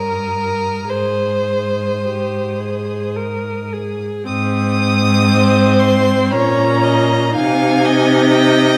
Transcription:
0, 0, Header, 1, 5, 480
1, 0, Start_track
1, 0, Key_signature, -4, "major"
1, 0, Tempo, 1121495
1, 384, Time_signature, 3, 2, 24, 8
1, 1826, Tempo, 1023891
1, 3266, Tempo, 991736
1, 3961, End_track
2, 0, Start_track
2, 0, Title_t, "Violin"
2, 0, Program_c, 0, 40
2, 0, Note_on_c, 0, 87, 44
2, 373, Note_off_c, 0, 87, 0
2, 387, Note_on_c, 0, 87, 44
2, 1721, Note_off_c, 0, 87, 0
2, 1825, Note_on_c, 0, 87, 115
2, 2544, Note_on_c, 0, 84, 105
2, 2551, Note_off_c, 0, 87, 0
2, 2790, Note_on_c, 0, 82, 107
2, 2797, Note_off_c, 0, 84, 0
2, 3268, Note_off_c, 0, 82, 0
2, 3272, Note_on_c, 0, 80, 111
2, 3745, Note_on_c, 0, 79, 97
2, 3752, Note_off_c, 0, 80, 0
2, 3961, Note_off_c, 0, 79, 0
2, 3961, End_track
3, 0, Start_track
3, 0, Title_t, "Violin"
3, 0, Program_c, 1, 40
3, 0, Note_on_c, 1, 70, 70
3, 383, Note_on_c, 1, 72, 63
3, 389, Note_off_c, 1, 70, 0
3, 1351, Note_off_c, 1, 72, 0
3, 2311, Note_on_c, 1, 72, 90
3, 2789, Note_on_c, 1, 73, 88
3, 2796, Note_off_c, 1, 72, 0
3, 3031, Note_on_c, 1, 75, 83
3, 3039, Note_off_c, 1, 73, 0
3, 3269, Note_off_c, 1, 75, 0
3, 3273, Note_on_c, 1, 77, 89
3, 3515, Note_on_c, 1, 75, 101
3, 3523, Note_off_c, 1, 77, 0
3, 3961, Note_off_c, 1, 75, 0
3, 3961, End_track
4, 0, Start_track
4, 0, Title_t, "Viola"
4, 0, Program_c, 2, 41
4, 0, Note_on_c, 2, 70, 49
4, 377, Note_off_c, 2, 70, 0
4, 380, Note_on_c, 2, 68, 43
4, 814, Note_off_c, 2, 68, 0
4, 872, Note_on_c, 2, 67, 48
4, 1114, Note_on_c, 2, 68, 47
4, 1121, Note_off_c, 2, 67, 0
4, 1353, Note_on_c, 2, 70, 56
4, 1359, Note_off_c, 2, 68, 0
4, 1595, Note_on_c, 2, 68, 49
4, 1601, Note_off_c, 2, 70, 0
4, 1826, Note_off_c, 2, 68, 0
4, 1828, Note_on_c, 2, 60, 81
4, 2788, Note_on_c, 2, 61, 90
4, 2795, Note_off_c, 2, 60, 0
4, 3264, Note_off_c, 2, 61, 0
4, 3267, Note_on_c, 2, 63, 82
4, 3961, Note_off_c, 2, 63, 0
4, 3961, End_track
5, 0, Start_track
5, 0, Title_t, "Cello"
5, 0, Program_c, 3, 42
5, 0, Note_on_c, 3, 43, 50
5, 375, Note_off_c, 3, 43, 0
5, 384, Note_on_c, 3, 44, 50
5, 1719, Note_off_c, 3, 44, 0
5, 1827, Note_on_c, 3, 44, 92
5, 2791, Note_on_c, 3, 46, 88
5, 2798, Note_off_c, 3, 44, 0
5, 3269, Note_on_c, 3, 48, 92
5, 3276, Note_off_c, 3, 46, 0
5, 3961, Note_off_c, 3, 48, 0
5, 3961, End_track
0, 0, End_of_file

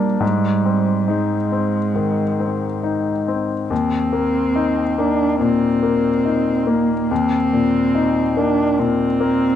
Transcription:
0, 0, Header, 1, 3, 480
1, 0, Start_track
1, 0, Key_signature, -3, "major"
1, 0, Tempo, 870827
1, 119, Time_signature, 4, 2, 24, 8
1, 2517, Tempo, 842697
1, 5358, End_track
2, 0, Start_track
2, 0, Title_t, "Cello"
2, 0, Program_c, 0, 42
2, 0, Note_on_c, 0, 55, 64
2, 116, Note_off_c, 0, 55, 0
2, 119, Note_on_c, 0, 55, 66
2, 598, Note_on_c, 0, 56, 49
2, 606, Note_off_c, 0, 55, 0
2, 1801, Note_off_c, 0, 56, 0
2, 2037, Note_on_c, 0, 60, 68
2, 2759, Note_on_c, 0, 62, 63
2, 2768, Note_off_c, 0, 60, 0
2, 2995, Note_off_c, 0, 62, 0
2, 2999, Note_on_c, 0, 60, 67
2, 3718, Note_on_c, 0, 58, 60
2, 3727, Note_off_c, 0, 60, 0
2, 3961, Note_on_c, 0, 60, 76
2, 3970, Note_off_c, 0, 58, 0
2, 4688, Note_on_c, 0, 62, 73
2, 4697, Note_off_c, 0, 60, 0
2, 4923, Note_on_c, 0, 60, 76
2, 4931, Note_off_c, 0, 62, 0
2, 5358, Note_off_c, 0, 60, 0
2, 5358, End_track
3, 0, Start_track
3, 0, Title_t, "Grand piano"
3, 0, Program_c, 1, 0
3, 0, Control_c, 1, 64, 127
3, 0, Note_on_c, 1, 53, 46
3, 0, Note_on_c, 1, 58, 37
3, 0, Note_on_c, 1, 62, 41
3, 112, Note_on_c, 1, 44, 47
3, 119, Note_off_c, 1, 58, 0
3, 130, Control_c, 1, 64, 0
3, 132, Note_off_c, 1, 53, 0
3, 132, Note_off_c, 1, 62, 0
3, 234, Control_c, 1, 64, 127
3, 360, Note_on_c, 1, 60, 31
3, 595, Note_on_c, 1, 63, 32
3, 747, Note_off_c, 1, 60, 0
3, 838, Note_on_c, 1, 60, 33
3, 983, Note_off_c, 1, 63, 0
3, 1059, Note_off_c, 1, 44, 0
3, 1078, Note_on_c, 1, 51, 34
3, 1225, Note_off_c, 1, 60, 0
3, 1321, Note_on_c, 1, 60, 31
3, 1465, Note_off_c, 1, 51, 0
3, 1562, Note_on_c, 1, 63, 30
3, 1707, Note_off_c, 1, 60, 0
3, 1809, Note_on_c, 1, 60, 30
3, 1947, Note_off_c, 1, 63, 0
3, 2041, Note_on_c, 1, 39, 43
3, 2046, Note_off_c, 1, 60, 0
3, 2053, Control_c, 1, 64, 0
3, 2140, Control_c, 1, 64, 127
3, 2274, Note_on_c, 1, 58, 35
3, 2511, Note_on_c, 1, 63, 37
3, 2659, Note_off_c, 1, 58, 0
3, 2754, Note_on_c, 1, 58, 34
3, 2901, Note_off_c, 1, 63, 0
3, 2975, Note_off_c, 1, 39, 0
3, 2995, Note_on_c, 1, 46, 39
3, 3141, Note_off_c, 1, 58, 0
3, 3235, Note_on_c, 1, 58, 38
3, 3381, Note_off_c, 1, 46, 0
3, 3479, Note_on_c, 1, 63, 36
3, 3622, Note_off_c, 1, 58, 0
3, 3714, Note_on_c, 1, 58, 36
3, 3865, Note_off_c, 1, 63, 0
3, 3967, Note_on_c, 1, 39, 46
3, 3973, Control_c, 1, 64, 0
3, 4055, Control_c, 1, 64, 127
3, 4105, Note_off_c, 1, 58, 0
3, 4206, Note_on_c, 1, 46, 37
3, 4444, Note_on_c, 1, 63, 39
3, 4589, Note_off_c, 1, 46, 0
3, 4683, Note_on_c, 1, 58, 37
3, 4827, Note_off_c, 1, 63, 0
3, 4902, Note_off_c, 1, 39, 0
3, 4922, Note_on_c, 1, 46, 44
3, 5065, Note_off_c, 1, 58, 0
3, 5159, Note_on_c, 1, 58, 42
3, 5302, Note_off_c, 1, 46, 0
3, 5358, Note_off_c, 1, 58, 0
3, 5358, End_track
0, 0, End_of_file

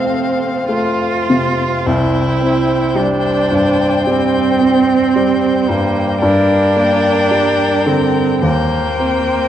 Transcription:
0, 0, Header, 1, 5, 480
1, 0, Start_track
1, 0, Tempo, 1295896
1, 255, Tempo, 1181102
1, 735, Time_signature, 4, 2, 24, 8
1, 735, Tempo, 1088929
1, 3135, Tempo, 1107011
1, 3615, Tempo, 1171875
1, 4050, End_track
2, 0, Start_track
2, 0, Title_t, "Violin"
2, 0, Program_c, 0, 40
2, 0, Note_on_c, 0, 77, 44
2, 720, Note_off_c, 0, 77, 0
2, 741, Note_on_c, 0, 79, 52
2, 2641, Note_off_c, 0, 79, 0
2, 2658, Note_on_c, 0, 79, 56
2, 3600, Note_off_c, 0, 79, 0
2, 3623, Note_on_c, 0, 79, 49
2, 4050, Note_off_c, 0, 79, 0
2, 4050, End_track
3, 0, Start_track
3, 0, Title_t, "Violin"
3, 0, Program_c, 1, 40
3, 0, Note_on_c, 1, 72, 41
3, 717, Note_off_c, 1, 72, 0
3, 729, Note_on_c, 1, 72, 52
3, 2635, Note_off_c, 1, 72, 0
3, 2651, Note_on_c, 1, 70, 58
3, 3597, Note_off_c, 1, 70, 0
3, 3616, Note_on_c, 1, 72, 56
3, 4050, Note_off_c, 1, 72, 0
3, 4050, End_track
4, 0, Start_track
4, 0, Title_t, "Cello"
4, 0, Program_c, 2, 42
4, 0, Note_on_c, 2, 60, 61
4, 253, Note_off_c, 2, 60, 0
4, 255, Note_on_c, 2, 65, 71
4, 733, Note_on_c, 2, 64, 75
4, 739, Note_off_c, 2, 65, 0
4, 1220, Note_on_c, 2, 62, 76
4, 1227, Note_off_c, 2, 64, 0
4, 1704, Note_off_c, 2, 62, 0
4, 1706, Note_on_c, 2, 60, 90
4, 2415, Note_on_c, 2, 58, 77
4, 2421, Note_off_c, 2, 60, 0
4, 2648, Note_off_c, 2, 58, 0
4, 2650, Note_on_c, 2, 62, 91
4, 3372, Note_on_c, 2, 60, 72
4, 3379, Note_off_c, 2, 62, 0
4, 3615, Note_on_c, 2, 58, 81
4, 3621, Note_off_c, 2, 60, 0
4, 4050, Note_off_c, 2, 58, 0
4, 4050, End_track
5, 0, Start_track
5, 0, Title_t, "Grand piano"
5, 0, Program_c, 3, 0
5, 0, Control_c, 3, 64, 127
5, 0, Note_on_c, 3, 48, 34
5, 0, Note_on_c, 3, 57, 38
5, 14, Note_on_c, 3, 60, 39
5, 161, Note_off_c, 3, 57, 0
5, 254, Note_on_c, 3, 57, 36
5, 405, Note_off_c, 3, 60, 0
5, 502, Note_off_c, 3, 48, 0
5, 502, Note_on_c, 3, 48, 38
5, 642, Note_off_c, 3, 57, 0
5, 734, Note_on_c, 3, 36, 53
5, 735, Note_off_c, 3, 48, 0
5, 741, Control_c, 3, 64, 0
5, 806, Control_c, 3, 64, 127
5, 975, Note_on_c, 3, 60, 41
5, 1213, Note_on_c, 3, 55, 41
5, 1365, Note_off_c, 3, 60, 0
5, 1459, Note_on_c, 3, 43, 39
5, 1606, Note_off_c, 3, 55, 0
5, 1688, Note_off_c, 3, 36, 0
5, 1703, Note_on_c, 3, 55, 43
5, 1848, Note_off_c, 3, 43, 0
5, 1942, Note_on_c, 3, 60, 48
5, 2087, Note_off_c, 3, 55, 0
5, 2183, Note_on_c, 3, 55, 46
5, 2324, Note_off_c, 3, 60, 0
5, 2419, Note_on_c, 3, 43, 46
5, 2561, Note_off_c, 3, 55, 0
5, 2646, Note_off_c, 3, 43, 0
5, 2653, Note_on_c, 3, 43, 57
5, 2662, Control_c, 3, 64, 0
5, 2730, Control_c, 3, 64, 127
5, 2892, Note_on_c, 3, 58, 40
5, 3132, Note_on_c, 3, 55, 42
5, 3279, Note_off_c, 3, 58, 0
5, 3373, Note_on_c, 3, 50, 42
5, 3517, Note_off_c, 3, 55, 0
5, 3598, Note_off_c, 3, 43, 0
5, 3612, Note_on_c, 3, 39, 53
5, 3615, Note_off_c, 3, 50, 0
5, 3624, Control_c, 3, 64, 0
5, 3695, Control_c, 3, 64, 127
5, 3849, Note_on_c, 3, 60, 42
5, 4050, Note_off_c, 3, 39, 0
5, 4050, Note_off_c, 3, 60, 0
5, 4050, End_track
0, 0, End_of_file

